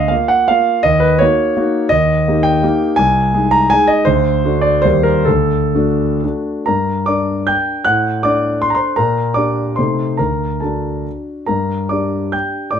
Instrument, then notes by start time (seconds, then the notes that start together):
grand piano
Already playing: D2 D#5 F5
0.08 A#3 F4 F5
0.28 F#5
0.48 A#3 F4 F5
0.83 D#2 D#5
1.00 B4
1.19 A#3 D#4 F#4 C#5
1.57 A#3 D#4 F#4
1.89 D#2 D#5
2.28 A#3 D#4 G4
2.43 G5
2.63 A#3 D#4 G4
2.96 C2 G#5
3.34 G#3 D#4 G#4
3.51 A#5
3.70 G#3 D#4 G#4 G#5
3.87 D#5
4.05 D2 C5
4.45 A3 D4 F#4
4.61 D5
4.82 D#2 G3 A#3 C5
4.86 G4
5.03 A#4
5.25 D2 A4
5.75 A3 D4 F#4
6.23 A3 D4 F#4
6.66 G2 A#4 A#5
7.06 D4 A#4 D5 D6
7.47 G5 G6
7.85 A2 F#5 F#6
8.23 D4 A4 D5 D6
8.62 C6
8.70 A#5
8.75 C5 C6
8.96 A#2 A#4 A#5
9.34 D4 G4 D5 D6
9.76 C3 A3 D#4 A4 C5 C6
10.17 D2 A#4 A#5
10.60 D4 F#4 A4 A5
11.46 G2 A#4 A#5
11.89 D4 G4 D5 D6
12.32 G5 G6
12.71 A2 D5 D6